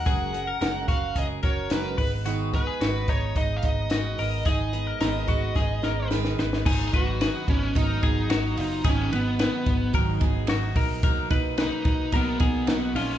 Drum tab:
CC |----------------|----------------|----------------|x---------------|
RD |----------------|----------------|----------------|--x-x-x-x-x-x-x-|
HH |x-x-x-x-x-x-x-o-|x-x-x-x-x-x-x-o-|x-x-x-x---------|--------------o-|
SD |----o-------o---|----o-------o---|----o---o-o-oooo|----o-------o---|
BD |o-----o-o-o---o-|--o---o-o-o-----|o-----o-o-------|o-o---o-o-o-----|

CC |----------------|----------------|
RD |x-x-x-x-x-x-x-x-|x-x-x-x-x-x-x-x-|
HH |p-------------o-|p-------------o-|
SD |----o-------o---|----o-------o---|
BD |o-----o-o-o---o-|o-o---o-o-o-----|